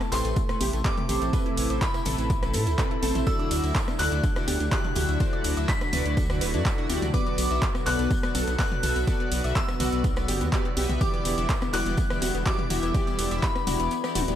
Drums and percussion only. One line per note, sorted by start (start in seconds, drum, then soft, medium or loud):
0.01 cross-stick medium
0.01 closed hi-hat soft
0.01 tambourine soft
0.01 high conga medium
0.12 clap medium
0.12 open hi-hat loud
0.12 ride medium
0.12 tambourine medium
0.24 closed hi-hat medium
0.24 tambourine soft
0.36 kick loud
0.36 closed hi-hat medium
0.36 tambourine medium
0.49 cross-stick medium
0.49 closed hi-hat soft
0.49 tambourine soft
0.61 open hi-hat loud
0.61 ride medium
0.61 tambourine medium
0.61 high conga loud
0.73 closed hi-hat medium
0.73 tambourine soft
0.85 kick loud
0.85 clap loud
0.85 closed hi-hat medium
0.85 tambourine medium
0.97 closed hi-hat soft
0.97 mid tom medium
1.09 mid tom medium
1.09 open hi-hat loud
1.09 ride medium
1.09 tambourine medium
1.22 closed hi-hat medium
1.22 tambourine soft
1.33 kick loud
1.33 closed hi-hat medium
1.33 tambourine medium
1.46 closed hi-hat soft
1.57 open hi-hat loud
1.57 ride medium
1.57 tambourine medium
1.70 closed hi-hat medium
1.70 tambourine soft
1.70 high woodblock medium
1.81 kick loud
1.81 clap loud
1.81 closed hi-hat medium
1.81 tambourine medium
1.94 cross-stick medium
1.94 closed hi-hat soft
1.94 tambourine soft
2.05 mid tom loud
2.05 open hi-hat loud
2.05 ride medium
2.05 tambourine medium
2.18 closed hi-hat medium
2.18 tambourine soft
2.30 kick loud
2.30 closed hi-hat medium
2.30 tambourine medium
2.43 cross-stick medium
2.43 closed hi-hat soft
2.43 tambourine soft
2.53 open hi-hat loud
2.53 ride medium
2.53 tambourine medium
2.66 closed hi-hat medium
2.66 tambourine soft
2.78 kick loud
2.78 clap loud
2.78 closed hi-hat medium
2.78 tambourine medium
2.91 closed hi-hat soft
3.03 open hi-hat loud
3.03 ride medium
3.03 tambourine loud
3.03 high conga medium
3.15 closed hi-hat medium
3.15 mid tom loud
3.15 tambourine soft
3.26 kick loud
3.26 closed hi-hat medium
3.26 tambourine medium
3.39 closed hi-hat soft
3.39 high woodblock medium
3.51 open hi-hat loud
3.51 ride medium
3.51 tambourine loud
3.63 closed hi-hat medium
3.63 tambourine soft
3.75 kick loud
3.75 clap loud
3.75 closed hi-hat soft
3.75 tambourine medium
3.88 cross-stick medium
3.88 closed hi-hat soft
3.88 tambourine soft
3.88 high conga medium
3.99 clap medium
3.99 open hi-hat loud
3.99 ride medium
3.99 tambourine loud
4.12 closed hi-hat medium
4.12 tambourine soft
4.24 kick loud
4.24 closed hi-hat medium
4.24 tambourine medium
4.36 cross-stick medium
4.36 closed hi-hat soft
4.36 tambourine soft
4.48 open hi-hat loud
4.48 ride medium
4.48 tambourine loud
4.48 high conga medium
4.60 closed hi-hat medium
4.60 tambourine soft
4.72 kick loud
4.72 clap loud
4.72 closed hi-hat medium
4.72 tambourine medium
4.85 closed hi-hat soft
4.85 mid tom loud
4.95 mid tom medium
4.95 open hi-hat loud
4.95 ride medium
4.95 tambourine loud
5.08 closed hi-hat medium
5.08 tambourine soft
5.20 kick loud
5.20 closed hi-hat soft
5.20 tambourine medium
5.33 closed hi-hat soft
5.33 high woodblock medium
5.44 open hi-hat loud
5.44 ride medium
5.44 tambourine loud
5.57 closed hi-hat medium
5.57 tambourine soft
5.57 high woodblock medium
5.68 kick loud
5.68 clap loud
5.68 closed hi-hat soft
5.68 tambourine medium
5.81 cross-stick medium
5.81 closed hi-hat soft
5.81 tambourine soft
5.93 mid tom loud
5.93 open hi-hat loud
5.93 ride medium
5.93 tambourine medium
5.93 high conga medium
6.06 closed hi-hat soft
6.06 tambourine soft
6.17 kick loud
6.17 closed hi-hat soft
6.17 tambourine medium
6.30 cross-stick medium
6.30 closed hi-hat soft
6.30 tambourine soft
6.41 open hi-hat loud
6.41 ride medium
6.41 tambourine medium
6.54 closed hi-hat medium
6.54 tambourine soft
6.65 kick loud
6.65 clap loud
6.65 closed hi-hat medium
6.65 tambourine medium
6.78 closed hi-hat soft
6.89 open hi-hat loud
6.89 ride medium
6.89 tambourine loud
6.89 high conga medium
7.02 closed hi-hat soft
7.02 mid tom loud
7.02 tambourine soft
7.14 kick loud
7.14 closed hi-hat soft
7.14 tambourine medium
7.27 closed hi-hat soft
7.27 high woodblock medium
7.38 open hi-hat loud
7.38 ride medium
7.38 tambourine medium
7.51 closed hi-hat soft
7.51 tambourine soft
7.62 kick loud
7.62 clap loud
7.62 closed hi-hat soft
7.62 tambourine soft
7.75 cross-stick medium
7.75 closed hi-hat soft
7.75 tambourine soft
7.75 high conga medium
7.86 clap medium
7.86 open hi-hat loud
7.86 ride medium
7.86 tambourine medium
7.99 closed hi-hat medium
7.99 tambourine soft
8.11 kick loud
8.11 closed hi-hat soft
8.11 tambourine medium
8.23 cross-stick medium
8.23 closed hi-hat soft
8.23 tambourine soft
8.35 open hi-hat loud
8.35 ride medium
8.35 tambourine medium
8.35 high conga medium
8.47 closed hi-hat medium
8.47 tambourine soft
8.59 kick loud
8.59 clap loud
8.59 closed hi-hat medium
8.59 tambourine medium
8.72 closed hi-hat soft
8.72 mid tom loud
8.83 mid tom medium
8.83 open hi-hat medium
8.83 ride medium
8.83 tambourine medium
8.96 closed hi-hat medium
8.96 tambourine soft
9.07 kick loud
9.07 closed hi-hat medium
9.07 tambourine medium
9.20 closed hi-hat soft
9.32 open hi-hat loud
9.32 ride medium
9.32 tambourine loud
9.44 closed hi-hat medium
9.44 tambourine soft
9.44 high woodblock medium
9.56 kick loud
9.56 clap loud
9.56 closed hi-hat medium
9.56 tambourine soft
9.68 cross-stick medium
9.68 closed hi-hat soft
9.68 tambourine soft
9.80 mid tom medium
9.80 open hi-hat medium
9.80 ride medium
9.80 tambourine medium
9.93 closed hi-hat medium
10.04 kick loud
10.04 closed hi-hat medium
10.04 tambourine soft
10.16 cross-stick medium
10.16 closed hi-hat soft
10.16 tambourine soft
10.28 open hi-hat loud
10.28 ride medium
10.28 tambourine medium
10.41 closed hi-hat medium
10.41 tambourine soft
10.53 kick loud
10.53 clap loud
10.53 closed hi-hat medium
10.53 tambourine medium
10.65 closed hi-hat soft
10.77 open hi-hat medium
10.77 ride medium
10.77 tambourine medium
10.77 high conga medium
10.89 closed hi-hat medium
10.89 mid tom medium
10.89 tambourine soft
11.01 kick loud
11.01 closed hi-hat medium
11.01 tambourine medium
11.14 closed hi-hat soft
11.14 high woodblock medium
11.25 open hi-hat loud
11.25 ride medium
11.25 tambourine loud
11.38 closed hi-hat medium
11.38 tambourine soft
11.49 kick loud
11.49 clap loud
11.49 closed hi-hat medium
11.49 tambourine medium
11.62 cross-stick medium
11.62 closed hi-hat soft
11.62 tambourine soft
11.62 high conga medium
11.74 clap medium
11.74 open hi-hat medium
11.74 ride medium
11.74 tambourine medium
11.85 closed hi-hat medium
11.85 tambourine soft
11.97 kick loud
11.97 closed hi-hat medium
11.97 tambourine medium
12.10 cross-stick medium
12.10 closed hi-hat soft
12.10 tambourine soft
12.22 open hi-hat loud
12.22 ride medium
12.22 tambourine loud
12.22 high conga loud
12.35 closed hi-hat medium
12.35 tambourine soft
12.46 kick loud
12.46 clap loud
12.46 closed hi-hat medium
12.46 tambourine soft
12.59 closed hi-hat soft
12.59 mid tom medium
12.70 mid tom medium
12.70 open hi-hat medium
12.70 ride medium
12.70 tambourine loud
12.82 closed hi-hat medium
12.82 tambourine soft
12.94 kick loud
12.94 closed hi-hat medium
12.94 tambourine medium
13.07 closed hi-hat soft
13.07 tambourine soft
13.07 high woodblock medium
13.19 open hi-hat loud
13.19 ride medium
13.19 tambourine medium
13.31 closed hi-hat medium
13.31 tambourine soft
13.31 high woodblock medium
13.43 kick loud
13.43 clap loud
13.43 closed hi-hat medium
13.43 tambourine soft
13.55 cross-stick medium
13.55 closed hi-hat soft
13.55 tambourine soft
13.55 high conga medium
13.67 mid tom medium
13.67 open hi-hat medium
13.67 ride medium
13.67 tambourine loud
13.67 high conga medium
13.80 closed hi-hat medium
13.80 tambourine soft
13.91 closed hi-hat medium
13.91 tambourine soft
14.04 cross-stick medium
14.04 closed hi-hat soft
14.04 tambourine soft
14.15 mid tom medium
14.15 open hi-hat loud
14.15 high tom medium
14.15 ride medium
14.15 tambourine medium
14.28 closed hi-hat medium
14.28 tambourine soft